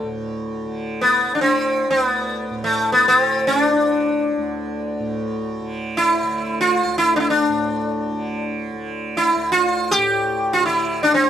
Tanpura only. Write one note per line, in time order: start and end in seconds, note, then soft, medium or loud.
0.00 1.89 D2 medium
0.00 2.50 A2 medium
0.00 0.66 D3 medium
0.66 1.27 D3 soft
1.27 3.14 D3 medium
1.90 4.37 D2 medium
2.50 4.99 A2 medium
3.14 3.75 D3 medium
3.75 5.60 D3 soft
4.37 6.85 D2 medium
4.99 7.48 A2 medium
5.60 6.23 D3 medium
6.23 8.12 D3 medium
6.85 9.35 D2 medium
7.49 9.97 A2 medium
8.12 8.73 D3 medium
8.73 10.59 D3 medium
9.35 11.30 D2 medium
9.97 11.30 A2 medium
10.59 11.20 D3 medium
11.20 11.30 D3 medium